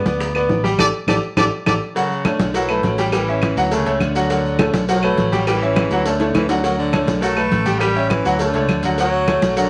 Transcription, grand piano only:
0.06 B3 B4 D5
0.35 B3 B4 D5
0.64 G3 G4 G5
0.79 G4 A4 D5
1.08 G4 A4 D5
1.38 G4 A4 D5
1.66 G4 A4 D5
1.96 F#3 F#4 F#5
2.25 A3 A4 C#5
2.54 F#3 F#4 F#5
2.69 A3 A4 B4
2.99 G3 G4 G5
3.13 G3 G4 G5
3.28 C#4 C#5 E5
3.57 F#3 F#4 F#5
3.72 A3 A4 C#5
3.86 A3 A4 C#5
4.15 F#3 F#4 F#5
4.30 F#3 F#4 F#5
4.59 A3 A4 C#5
4.89 F#3 F#4 F#5
5.03 A3 A4 B4
5.32 G3 G4 G5
5.47 G3 G4 G5
5.62 C#4 C#5 E5
5.92 F#3 F#4 F#5
6.07 A3 A4 C#5
6.21 A3 A4 C#5
6.50 F#3 F#4 F#5
6.64 F#3 F#4 F#5
6.93 A3 A4 C#5
7.22 F#3 F#4 F#5
7.37 A3 A4 B4
7.66 G3 G4 G5
7.81 G3 G4 G5
7.96 C#4 C#5 E5
8.25 F#3 F#4 F#5
8.40 A3 A4 C#5
8.55 A3 A4 C#5
8.85 F#3 F#4 F#5
8.99 F#3 F#4 F#5
9.28 A3 A4 C#5
9.56 F#3 F#4 F#5

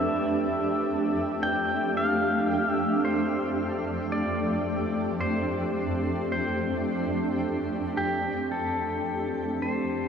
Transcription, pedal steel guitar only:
Already playing: E5
1.43 G5
1.97 F5
2.70 E5
3.05 C5
4.12 D5
5.21 C5
6.32 C5
7.97 G4
8.52 A4
9.62 C5

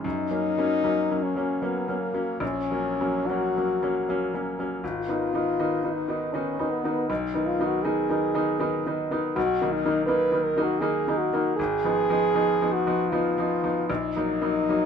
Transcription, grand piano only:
0.04 F#2
0.31 F#3 A#3 C#4
0.58 F#3 A#3 C#4
0.84 F#3 A#3 C#4
1.10 F#3 A#3 C#4
1.36 F#3 A#3 C#4
1.62 F#3 A#3 C#4
1.88 F#3 A#3 C#4
2.13 F#3 A#3 C#4
2.40 A#1
2.71 F#3 A#3 C#4
3.01 F#3 A#3 C#4
3.30 F#3 A#3 C#4
3.57 F#3 A#3 C#4
3.83 F#3 A#3 C#4
4.09 F#3 A#3 C#4
4.34 F#3 A#3 C#4
4.59 F#3 A#3 C#4
4.84 G#1
5.08 D#3 B3 D#4
5.34 D#3 B3 D#4
5.59 D#3 B3 D#4
5.83 D#3 B3 D#4
6.08 D#3 B3 D#4
6.34 D#3 B3 D#4
6.59 D#3 B3 D#4
6.84 D#3 B3 D#4
7.10 B1
7.34 D#3 B3 D#4
7.60 D#3 B3 D#4
7.84 D#3 B3 D#4
8.09 D#3 B3 D#4
8.34 D#3 B3 D#4
8.60 D#3 B3 D#4
8.86 D#3 B3 D#4
9.11 D#3 B3 D#4
9.36 B1
9.62 D#3 A#3 D#4
9.85 D#3 A#3 D#4
10.08 D#3 A#3 D#4
10.32 D#3 A#3 D#4
10.57 D#3 A#3 D#4
10.81 D#3 A#3 D#4
11.08 D#3 A#3 D#4
11.33 D#3 A#3 D#4
11.59 G#1
11.84 F3 B3 D#4
12.10 F3 B3 D#4
12.35 F3 B3 D#4
12.61 F3 B3 D#4
12.87 F3 B3 D#4
13.12 F3 B3 D#4
13.38 F3 B3 D#4
13.63 F3 B3 D#4
13.90 A#1
14.16 F#3 A#3 D#4
14.41 F#3 A#3 D#4
14.69 F#3 A#3 D#4

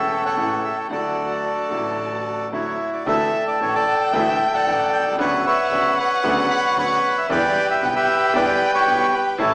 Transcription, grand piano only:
Already playing: E1 E2 C#3 E3 A3 E4
0.37 A1 A2 C#3 E3 A3 E4
0.88 D2 D3 F#3 A3 E4
1.69 A1 A2 D3 F#3 A3 E4
2.52 D2 D3 F#3 A3 E4
3.06 D2 D3 E3 A3 E4
3.61 A1 A2 D3 E3 A3 E4
4.13 D2 D3 E3 A3 E4
4.67 A1 A2 D3 E3 A3 E4
4.99 B1
5.06 C2
5.12 C#2
5.18 D2 C#3 D3 F#3 B3 D4
5.71 D2 C#3 D3 F#3 B3 D4
6.24 D2 C#3 D3 F#3 B3 D4
6.77 D2 C#3 D3 F#3 B3 D4
7.29 E2 D3 E3 G3 B3 E4
7.81 B1 B2 D3 G3 B3 E4
8.34 E2 D3 E3 G3 B3 E4
8.86 B1 B2 D3 G3 B3 E4
9.38 A1 A2 C#3 E3 A3 E4

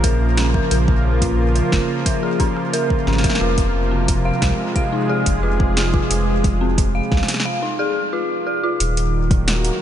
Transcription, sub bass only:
Already playing: A#1
0.71 A#1
1.72 F1
3.07 G#1
3.41 F1
4.42 C2
5.26 F1
6.11 F1
7.12 C2
8.80 D#1

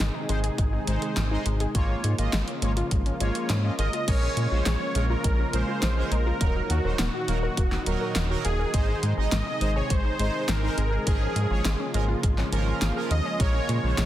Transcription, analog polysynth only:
0.29 G#3 D#4 C5
0.87 G#3 D#4 C5
1.31 G#3 D#4 C5
1.75 A#3 F4 C#5
2.18 A#3 F4 D#5
2.62 A#3 F4 C#5
3.20 A#3 F4 C#5
3.64 A#3 F4 D#5
3.79 A#3 F4 A#4
4.08 G#3 C#4 A#4
4.51 G#3 C#4 C5
4.95 G#3 C#4 A#4
5.53 G#3 C#4 A#4
5.97 G#3 C#4 A#4
6.41 F#3 D#4 A#4
6.84 F#3 D#4 C5
7.28 F#3 D#4 A#4
7.86 F#3 D#4 A#4
8.30 F#3 D#4 A#4
8.74 G#3 D#4 C5
9.17 G#3 D#4 D#5
9.61 G#3 D#4 C5
10.19 G#3 D#4 C5
10.63 G#3 D#4 C5
11.07 F3 C#4 A#4
11.51 F3 C#4 C#5
11.94 F3 C#4 A#4
12.52 F3 C#4 A#4
12.96 F3 C#4 A#4
13.40 G#3 C#4 A#4
13.83 G#3 C#4 C5

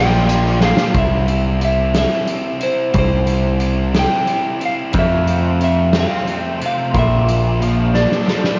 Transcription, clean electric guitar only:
Already playing: D5 G5
0.65 F5
0.98 E5
1.65 E5
1.98 E5
2.63 C5
2.98 C5
3.99 G5
4.66 F5
4.99 E5
5.64 E5
6.00 F5
6.42 E5
6.66 F5
6.99 E5
7.95 D5

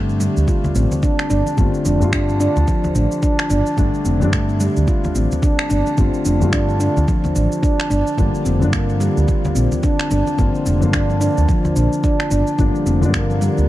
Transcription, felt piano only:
Already playing: D3 G3 A3 D4
1.57 D3 G3 A3 F4
1.99 D3 G3 A3
2.04 F4
3.77 D3 G3 A3 D4
4.20 D3 G3 A3 D4
5.97 D3 G3 A3 F4
6.40 D3 G3 A3 F4
8.17 D3 F3 A#3 D4
8.60 D3 F3 A#3 D4
10.38 D3 F3 A#3 F4
10.81 D3 F3 A#3
10.85 F4
12.58 D3 F3 A#3 D4
13.01 D3 F3 A#3 D4

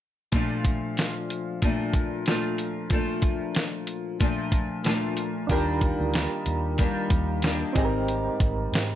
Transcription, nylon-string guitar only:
0.32 A#2 F3 A3 D4
1.62 A#2 F3 A3 D4
2.26 A#2 F3 A3 D4
2.90 A#2 F3 A3 D4
4.20 A#2 F3 A3 D4
4.84 A#2 F3 A3 D4
5.49 D#3 G3 A#3 D4
6.14 D#3 G3 A#3 D4
6.78 D#3 G3 A#3 D4
7.43 D#3 G3 A#3 D4
7.75 G#2 G3 C4 D#4

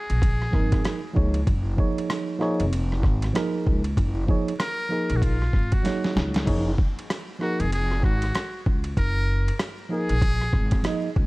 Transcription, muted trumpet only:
Already playing: G#4
4.61 A#4
5.16 F#4
5.23 F4
5.73 F#4
7.42 F#4
7.61 G#4
7.73 G#4
8.05 F#4
8.98 A#4
9.92 G#4

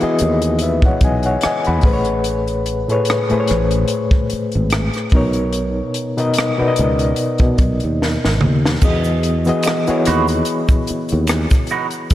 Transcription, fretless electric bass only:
0.03 muted fretless electric bass stroke
0.21 D#2
1.02 B1
1.45 muted fretless electric bass stroke
1.68 E2
1.84 A1
3.32 muted fretless electric bass stroke
3.51 A1
4.33 muted fretless electric bass stroke
4.55 G#1
5.13 B1
6.61 muted fretless electric bass stroke
6.79 C#2
7.41 B2
7.60 B1
7.84 D#2
8.25 G#1
8.44 D#2
8.83 E2
9.88 muted fretless electric bass stroke
10.07 D#2
10.90 muted fretless electric bass stroke
11.12 D#2

